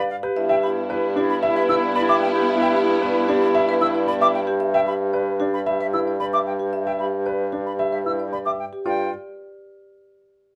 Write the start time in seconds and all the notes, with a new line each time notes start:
Already playing: G2 D5 F5
0.10 F5
0.23 G4 B4
0.36 G2 B3 E4 E5
0.49 E5 G5
0.63 E4 G4 B5
0.90 E4 B4 D5
1.16 D4 E4 G4
1.29 B5
1.43 E4 E5 B5
1.56 B4 E5
1.69 E4 E6
1.74 E4
1.83 D5
1.95 D5 B5
2.01 E4
2.09 E5 G5 D6
2.22 G5
2.29 E4
2.36 G4
2.49 E5
2.56 E4
2.62 E5 G5
2.75 G4 B5
2.83 E4
3.02 B4 D5
3.10 E4
3.28 D4 G4
3.38 E4 B5
3.55 E5 B5
3.66 E4 B4 E5
3.81 E4 E6
3.93 E4 D5
4.07 D5 B5
4.20 E4 E5 G5 D6
4.34 G5
4.47 G4
4.60 E5
4.74 E5 G5
4.87 G4 B5
5.13 B4 D5
5.40 D4 G4
5.54 B5
5.66 E5 B5
5.80 B4 E5
5.93 E4 E6
6.07 D5
6.20 D5 B5
6.33 E5 G5 D6
6.47 G5
6.59 G4
6.73 E5
6.86 E5 G5
6.99 G4 B5
7.26 B4 D5
7.52 D4 G4
7.66 B5
7.79 E5 B5
7.92 B4 E5
8.06 E4 E6
8.19 D5
8.32 D5 B5
8.45 E5 G5 D6
8.59 G5
8.73 G4
8.85 G2 F4 D5 G5